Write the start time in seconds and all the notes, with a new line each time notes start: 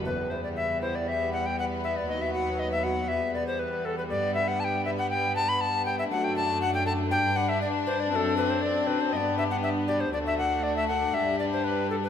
0.04 E2 G3 B3 B4
0.30 B3 E4 C5
0.43 D5
0.56 E5
0.81 B3 E4 C5
0.95 D5
1.08 E5
1.33 B3 E4 F#5
1.46 G5
1.59 F#5
1.83 B3 E4 E5
1.97 D5
2.08 D#2 F#3 D#5
2.22 E5
2.33 B3 F#4 F#5
2.59 D#5
2.72 E5
2.84 B3 F#4 F#5
3.08 E2 G3 E5
3.34 B3 B4 D5
3.47 C5
3.59 B4
3.85 B3 A4 B4
3.98 B4
4.10 G2 B3 B4 D5
4.35 B3 B4 E5
4.48 F#5
4.60 A5
4.64 G5
4.85 B3 B4 E5
4.98 F#5
5.10 G5
5.36 B3 B4 A5
5.49 B5
5.61 A5
5.85 B3 B4 G5
5.99 E5
6.11 F#2 A3 D4 A4 F#5
6.24 G5
6.36 A3 D4 A4 A5
6.61 F#5
6.74 G5
6.86 A3 D4 A4 A5
7.11 G2 D4 B4 G5
7.36 D4 B4 F#5
7.49 E5
7.62 D5
7.86 D4 B4 C5
8.00 D5
8.11 F#2 C4 A4 B4
8.16 A4
8.36 C4 D4 A4 B4
8.50 C5
8.62 D5
8.87 C4 D4 A4 B4
9.01 C5
9.12 G2 B3 G4 D#5
9.17 D5
9.38 B3 D4 G4 E5
9.51 F#5
9.63 E5
9.88 B3 D4 G4 D5
10.00 C5
10.13 D2 A3 D4 F#4 D5
10.26 E5
10.38 A3 D4 A4 F#5
10.63 D5
10.77 E5
10.88 A3 D4 A4 F#5
11.14 G2 G3 G4 E5
11.39 B3 D4 G4 D5
11.52 C5
11.64 B4
11.90 B3 D4 G4 A4
12.04 B4